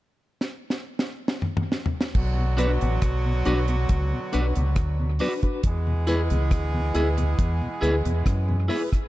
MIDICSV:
0, 0, Header, 1, 8, 480
1, 0, Start_track
1, 0, Tempo, 872093
1, 1184, Time_signature, 4, 2, 24, 8
1, 4998, End_track
2, 0, Start_track
2, 0, Title_t, "Clean electric guitar"
2, 0, Program_c, 0, 27
2, 1415, Note_on_c, 0, 62, 80
2, 1419, Note_on_c, 0, 66, 87
2, 1423, Note_on_c, 0, 71, 104
2, 1489, Note_off_c, 0, 62, 0
2, 1491, Note_off_c, 0, 66, 0
2, 1493, Note_off_c, 0, 71, 0
2, 1904, Note_on_c, 0, 62, 76
2, 1907, Note_on_c, 0, 66, 89
2, 1911, Note_on_c, 0, 71, 72
2, 1973, Note_off_c, 0, 62, 0
2, 1975, Note_off_c, 0, 66, 0
2, 1976, Note_off_c, 0, 71, 0
2, 2382, Note_on_c, 0, 62, 68
2, 2386, Note_on_c, 0, 66, 81
2, 2389, Note_on_c, 0, 71, 75
2, 2452, Note_off_c, 0, 62, 0
2, 2454, Note_off_c, 0, 66, 0
2, 2456, Note_off_c, 0, 71, 0
2, 2863, Note_on_c, 0, 62, 89
2, 2867, Note_on_c, 0, 66, 87
2, 2869, Note_on_c, 0, 71, 97
2, 2933, Note_off_c, 0, 62, 0
2, 2935, Note_off_c, 0, 66, 0
2, 2936, Note_off_c, 0, 71, 0
2, 3342, Note_on_c, 0, 64, 88
2, 3348, Note_on_c, 0, 68, 87
2, 3351, Note_on_c, 0, 71, 95
2, 3412, Note_off_c, 0, 64, 0
2, 3416, Note_off_c, 0, 68, 0
2, 3417, Note_off_c, 0, 71, 0
2, 3825, Note_on_c, 0, 64, 68
2, 3830, Note_on_c, 0, 68, 70
2, 3833, Note_on_c, 0, 71, 76
2, 3894, Note_off_c, 0, 64, 0
2, 3896, Note_off_c, 0, 68, 0
2, 3898, Note_off_c, 0, 71, 0
2, 4299, Note_on_c, 0, 64, 80
2, 4303, Note_on_c, 0, 68, 88
2, 4308, Note_on_c, 0, 71, 81
2, 4371, Note_off_c, 0, 64, 0
2, 4373, Note_off_c, 0, 68, 0
2, 4376, Note_off_c, 0, 71, 0
2, 4779, Note_on_c, 0, 64, 74
2, 4785, Note_on_c, 0, 68, 83
2, 4788, Note_on_c, 0, 71, 82
2, 4852, Note_off_c, 0, 64, 0
2, 4854, Note_off_c, 0, 68, 0
2, 4856, Note_off_c, 0, 71, 0
2, 4998, End_track
3, 0, Start_track
3, 0, Title_t, "Reed electric piano"
3, 0, Program_c, 1, 4
3, 1418, Note_on_c, 1, 62, 91
3, 1423, Note_on_c, 1, 66, 79
3, 1426, Note_on_c, 1, 71, 100
3, 1524, Note_off_c, 1, 62, 0
3, 1526, Note_off_c, 1, 66, 0
3, 1528, Note_off_c, 1, 71, 0
3, 1902, Note_on_c, 1, 62, 87
3, 1905, Note_on_c, 1, 66, 81
3, 1908, Note_on_c, 1, 71, 87
3, 2006, Note_off_c, 1, 62, 0
3, 2007, Note_off_c, 1, 66, 0
3, 2009, Note_off_c, 1, 71, 0
3, 2381, Note_on_c, 1, 62, 82
3, 2384, Note_on_c, 1, 66, 73
3, 2388, Note_on_c, 1, 71, 80
3, 2485, Note_off_c, 1, 62, 0
3, 2487, Note_off_c, 1, 66, 0
3, 2489, Note_off_c, 1, 71, 0
3, 2862, Note_on_c, 1, 62, 81
3, 2865, Note_on_c, 1, 66, 81
3, 2869, Note_on_c, 1, 71, 93
3, 2966, Note_off_c, 1, 62, 0
3, 2968, Note_off_c, 1, 66, 0
3, 2970, Note_off_c, 1, 71, 0
3, 2987, Note_on_c, 1, 62, 76
3, 2990, Note_on_c, 1, 66, 63
3, 2993, Note_on_c, 1, 71, 78
3, 3082, Note_off_c, 1, 62, 0
3, 3084, Note_off_c, 1, 66, 0
3, 3085, Note_off_c, 1, 71, 0
3, 3342, Note_on_c, 1, 64, 89
3, 3345, Note_on_c, 1, 68, 79
3, 3349, Note_on_c, 1, 71, 94
3, 3446, Note_off_c, 1, 64, 0
3, 3448, Note_off_c, 1, 68, 0
3, 3450, Note_off_c, 1, 71, 0
3, 3820, Note_on_c, 1, 64, 93
3, 3825, Note_on_c, 1, 68, 76
3, 3828, Note_on_c, 1, 71, 102
3, 3926, Note_off_c, 1, 64, 0
3, 3928, Note_off_c, 1, 68, 0
3, 3929, Note_off_c, 1, 71, 0
3, 4306, Note_on_c, 1, 64, 84
3, 4309, Note_on_c, 1, 68, 74
3, 4312, Note_on_c, 1, 71, 90
3, 4409, Note_off_c, 1, 64, 0
3, 4410, Note_off_c, 1, 68, 0
3, 4412, Note_off_c, 1, 71, 0
3, 4785, Note_on_c, 1, 64, 87
3, 4789, Note_on_c, 1, 68, 73
3, 4792, Note_on_c, 1, 71, 102
3, 4889, Note_off_c, 1, 64, 0
3, 4891, Note_off_c, 1, 68, 0
3, 4892, Note_off_c, 1, 71, 0
3, 4998, End_track
4, 0, Start_track
4, 0, Title_t, "Horn section"
4, 0, Program_c, 2, 61
4, 1187, Note_on_c, 2, 50, 72
4, 1187, Note_on_c, 2, 59, 81
4, 1188, Note_on_c, 2, 54, 84
4, 1188, Note_on_c, 2, 66, 91
4, 2843, Note_off_c, 2, 50, 0
4, 2843, Note_off_c, 2, 59, 0
4, 2844, Note_off_c, 2, 54, 0
4, 2844, Note_off_c, 2, 66, 0
4, 3105, Note_on_c, 2, 52, 81
4, 3105, Note_on_c, 2, 59, 80
4, 3106, Note_on_c, 2, 56, 81
4, 3106, Note_on_c, 2, 68, 88
4, 4764, Note_off_c, 2, 52, 0
4, 4764, Note_off_c, 2, 56, 0
4, 4764, Note_off_c, 2, 59, 0
4, 4764, Note_off_c, 2, 68, 0
4, 4998, End_track
5, 0, Start_track
5, 0, Title_t, "Tonewheel organ"
5, 0, Program_c, 3, 16
5, 1315, Note_on_c, 3, 47, 55
5, 1352, Note_off_c, 3, 47, 0
5, 1425, Note_on_c, 3, 54, 75
5, 1427, Note_on_c, 3, 59, 68
5, 1429, Note_on_c, 3, 62, 85
5, 1468, Note_off_c, 3, 54, 0
5, 1469, Note_off_c, 3, 59, 0
5, 1470, Note_off_c, 3, 62, 0
5, 1553, Note_on_c, 3, 47, 56
5, 1591, Note_off_c, 3, 47, 0
5, 1795, Note_on_c, 3, 47, 60
5, 1832, Note_off_c, 3, 47, 0
5, 1907, Note_on_c, 3, 54, 76
5, 1907, Note_on_c, 3, 59, 69
5, 1910, Note_on_c, 3, 62, 86
5, 1949, Note_off_c, 3, 54, 0
5, 1949, Note_off_c, 3, 59, 0
5, 1951, Note_off_c, 3, 62, 0
5, 2030, Note_on_c, 3, 47, 62
5, 2070, Note_off_c, 3, 47, 0
5, 2275, Note_on_c, 3, 47, 56
5, 2312, Note_off_c, 3, 47, 0
5, 2383, Note_on_c, 3, 54, 66
5, 2383, Note_on_c, 3, 59, 57
5, 2386, Note_on_c, 3, 62, 78
5, 2427, Note_off_c, 3, 59, 0
5, 2428, Note_off_c, 3, 54, 0
5, 2429, Note_off_c, 3, 62, 0
5, 2512, Note_on_c, 3, 47, 59
5, 2551, Note_off_c, 3, 47, 0
5, 2751, Note_on_c, 3, 47, 53
5, 2790, Note_off_c, 3, 47, 0
5, 2864, Note_on_c, 3, 54, 79
5, 2866, Note_on_c, 3, 59, 70
5, 2869, Note_on_c, 3, 62, 84
5, 2908, Note_off_c, 3, 54, 0
5, 2909, Note_off_c, 3, 59, 0
5, 2910, Note_off_c, 3, 62, 0
5, 3231, Note_on_c, 3, 40, 61
5, 3231, Note_on_c, 3, 47, 62
5, 3270, Note_off_c, 3, 47, 0
5, 3271, Note_off_c, 3, 40, 0
5, 3346, Note_on_c, 3, 56, 72
5, 3347, Note_on_c, 3, 59, 66
5, 3347, Note_on_c, 3, 64, 74
5, 3389, Note_off_c, 3, 56, 0
5, 3389, Note_off_c, 3, 59, 0
5, 3390, Note_off_c, 3, 64, 0
5, 3473, Note_on_c, 3, 40, 54
5, 3474, Note_on_c, 3, 47, 55
5, 3512, Note_off_c, 3, 40, 0
5, 3512, Note_off_c, 3, 47, 0
5, 3710, Note_on_c, 3, 40, 58
5, 3711, Note_on_c, 3, 47, 56
5, 3750, Note_off_c, 3, 40, 0
5, 3751, Note_off_c, 3, 47, 0
5, 3824, Note_on_c, 3, 56, 75
5, 3824, Note_on_c, 3, 64, 80
5, 3825, Note_on_c, 3, 59, 76
5, 3868, Note_off_c, 3, 56, 0
5, 3868, Note_off_c, 3, 64, 0
5, 3869, Note_off_c, 3, 59, 0
5, 3950, Note_on_c, 3, 47, 57
5, 3951, Note_on_c, 3, 40, 65
5, 3990, Note_off_c, 3, 47, 0
5, 3991, Note_off_c, 3, 40, 0
5, 4193, Note_on_c, 3, 40, 57
5, 4193, Note_on_c, 3, 47, 52
5, 4232, Note_off_c, 3, 40, 0
5, 4232, Note_off_c, 3, 47, 0
5, 4304, Note_on_c, 3, 56, 69
5, 4307, Note_on_c, 3, 59, 68
5, 4308, Note_on_c, 3, 64, 72
5, 4349, Note_off_c, 3, 56, 0
5, 4350, Note_off_c, 3, 59, 0
5, 4351, Note_off_c, 3, 64, 0
5, 4432, Note_on_c, 3, 40, 62
5, 4432, Note_on_c, 3, 47, 55
5, 4471, Note_off_c, 3, 40, 0
5, 4471, Note_off_c, 3, 47, 0
5, 4671, Note_on_c, 3, 40, 60
5, 4672, Note_on_c, 3, 47, 56
5, 4711, Note_off_c, 3, 40, 0
5, 4712, Note_off_c, 3, 47, 0
5, 4784, Note_on_c, 3, 56, 74
5, 4784, Note_on_c, 3, 59, 68
5, 4786, Note_on_c, 3, 64, 80
5, 4829, Note_off_c, 3, 56, 0
5, 4829, Note_off_c, 3, 59, 0
5, 4830, Note_off_c, 3, 64, 0
5, 4998, End_track
6, 0, Start_track
6, 0, Title_t, "Fingered electric bass"
6, 0, Program_c, 4, 33
6, 1183, Note_on_c, 4, 35, 105
6, 1534, Note_off_c, 4, 35, 0
6, 1553, Note_on_c, 4, 33, 83
6, 1661, Note_off_c, 4, 33, 0
6, 1665, Note_on_c, 4, 35, 86
6, 1895, Note_off_c, 4, 35, 0
6, 1907, Note_on_c, 4, 35, 82
6, 2136, Note_off_c, 4, 35, 0
6, 2144, Note_on_c, 4, 37, 101
6, 2265, Note_off_c, 4, 37, 0
6, 2390, Note_on_c, 4, 35, 80
6, 2508, Note_off_c, 4, 35, 0
6, 2514, Note_on_c, 4, 37, 92
6, 2619, Note_off_c, 4, 37, 0
6, 2622, Note_on_c, 4, 38, 89
6, 2853, Note_off_c, 4, 38, 0
6, 3105, Note_on_c, 4, 40, 88
6, 3456, Note_off_c, 4, 40, 0
6, 3472, Note_on_c, 4, 37, 90
6, 3581, Note_off_c, 4, 37, 0
6, 3583, Note_on_c, 4, 38, 85
6, 3814, Note_off_c, 4, 38, 0
6, 3826, Note_on_c, 4, 38, 80
6, 4056, Note_off_c, 4, 38, 0
6, 4067, Note_on_c, 4, 40, 91
6, 4187, Note_off_c, 4, 40, 0
6, 4305, Note_on_c, 4, 38, 72
6, 4425, Note_off_c, 4, 38, 0
6, 4434, Note_on_c, 4, 40, 80
6, 4542, Note_off_c, 4, 40, 0
6, 4547, Note_on_c, 4, 42, 99
6, 4777, Note_off_c, 4, 42, 0
6, 4998, End_track
7, 0, Start_track
7, 0, Title_t, "Muted clean electric guitar strokes"
7, 2029, Note_on_c, 9, 29, 43
7, 2084, Note_off_c, 9, 29, 0
7, 3948, Note_on_c, 9, 29, 38
7, 4003, Note_off_c, 9, 29, 0
7, 4998, End_track
8, 0, Start_track
8, 0, Title_t, "Drums"
8, 226, Note_on_c, 9, 38, 55
8, 281, Note_off_c, 9, 38, 0
8, 387, Note_on_c, 9, 38, 62
8, 442, Note_off_c, 9, 38, 0
8, 546, Note_on_c, 9, 38, 73
8, 601, Note_off_c, 9, 38, 0
8, 705, Note_on_c, 9, 38, 90
8, 760, Note_off_c, 9, 38, 0
8, 782, Note_on_c, 9, 45, 74
8, 837, Note_off_c, 9, 45, 0
8, 863, Note_on_c, 9, 45, 97
8, 918, Note_off_c, 9, 45, 0
8, 945, Note_on_c, 9, 38, 79
8, 1000, Note_off_c, 9, 38, 0
8, 1022, Note_on_c, 9, 43, 98
8, 1077, Note_off_c, 9, 43, 0
8, 1104, Note_on_c, 9, 38, 85
8, 1159, Note_off_c, 9, 38, 0
8, 1182, Note_on_c, 9, 49, 74
8, 1183, Note_on_c, 9, 36, 111
8, 1237, Note_off_c, 9, 49, 0
8, 1238, Note_off_c, 9, 36, 0
8, 1421, Note_on_c, 9, 42, 77
8, 1426, Note_on_c, 9, 37, 67
8, 1476, Note_off_c, 9, 42, 0
8, 1481, Note_off_c, 9, 37, 0
8, 1547, Note_on_c, 9, 42, 49
8, 1602, Note_off_c, 9, 42, 0
8, 1661, Note_on_c, 9, 42, 93
8, 1663, Note_on_c, 9, 36, 106
8, 1663, Note_on_c, 9, 37, 103
8, 1716, Note_off_c, 9, 42, 0
8, 1718, Note_off_c, 9, 36, 0
8, 1718, Note_off_c, 9, 37, 0
8, 1900, Note_on_c, 9, 42, 59
8, 1955, Note_off_c, 9, 42, 0
8, 2024, Note_on_c, 9, 42, 44
8, 2079, Note_off_c, 9, 42, 0
8, 2141, Note_on_c, 9, 42, 78
8, 2143, Note_on_c, 9, 36, 110
8, 2196, Note_off_c, 9, 42, 0
8, 2198, Note_off_c, 9, 36, 0
8, 2382, Note_on_c, 9, 42, 66
8, 2437, Note_off_c, 9, 42, 0
8, 2506, Note_on_c, 9, 42, 55
8, 2562, Note_off_c, 9, 42, 0
8, 2619, Note_on_c, 9, 42, 80
8, 2621, Note_on_c, 9, 36, 112
8, 2621, Note_on_c, 9, 37, 114
8, 2674, Note_off_c, 9, 42, 0
8, 2676, Note_off_c, 9, 36, 0
8, 2676, Note_off_c, 9, 37, 0
8, 2857, Note_on_c, 9, 46, 72
8, 2912, Note_off_c, 9, 46, 0
8, 2988, Note_on_c, 9, 36, 77
8, 2988, Note_on_c, 9, 42, 45
8, 3043, Note_off_c, 9, 36, 0
8, 3043, Note_off_c, 9, 42, 0
8, 3101, Note_on_c, 9, 42, 91
8, 3103, Note_on_c, 9, 36, 123
8, 3156, Note_off_c, 9, 42, 0
8, 3158, Note_off_c, 9, 36, 0
8, 3341, Note_on_c, 9, 42, 76
8, 3397, Note_off_c, 9, 42, 0
8, 3468, Note_on_c, 9, 42, 51
8, 3523, Note_off_c, 9, 42, 0
8, 3583, Note_on_c, 9, 36, 108
8, 3583, Note_on_c, 9, 42, 84
8, 3585, Note_on_c, 9, 37, 108
8, 3638, Note_off_c, 9, 36, 0
8, 3638, Note_off_c, 9, 42, 0
8, 3640, Note_off_c, 9, 37, 0
8, 3822, Note_on_c, 9, 42, 61
8, 3877, Note_off_c, 9, 42, 0
8, 3950, Note_on_c, 9, 42, 49
8, 4005, Note_off_c, 9, 42, 0
8, 4066, Note_on_c, 9, 36, 115
8, 4066, Note_on_c, 9, 42, 78
8, 4121, Note_off_c, 9, 36, 0
8, 4121, Note_off_c, 9, 42, 0
8, 4309, Note_on_c, 9, 42, 66
8, 4364, Note_off_c, 9, 42, 0
8, 4433, Note_on_c, 9, 42, 60
8, 4488, Note_off_c, 9, 42, 0
8, 4545, Note_on_c, 9, 36, 112
8, 4547, Note_on_c, 9, 42, 92
8, 4549, Note_on_c, 9, 37, 113
8, 4600, Note_off_c, 9, 36, 0
8, 4602, Note_off_c, 9, 42, 0
8, 4604, Note_off_c, 9, 37, 0
8, 4787, Note_on_c, 9, 46, 73
8, 4842, Note_off_c, 9, 46, 0
8, 4912, Note_on_c, 9, 36, 72
8, 4913, Note_on_c, 9, 37, 62
8, 4915, Note_on_c, 9, 42, 48
8, 4967, Note_off_c, 9, 36, 0
8, 4968, Note_off_c, 9, 37, 0
8, 4970, Note_off_c, 9, 42, 0
8, 4998, End_track
0, 0, End_of_file